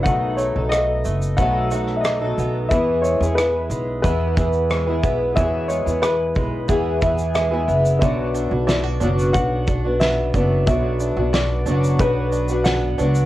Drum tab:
SH |x-x-x-xxx-x-x-x-|x-xxx-x-x-xxx-x-|x-xxx-x-x-xxx-xx|x-x-x-xxx-x-x-x-|
SD |----r------rr---|----r-------r---|----r-------r---|----o-------o---|
BD |o-------o-------|o-------o-o---o-|o-----o-o-o-----|o-------o-o---o-|

SH |x-x-x-xxx-xxx-xx|
SD |----o-------o---|
BD |o-------o-------|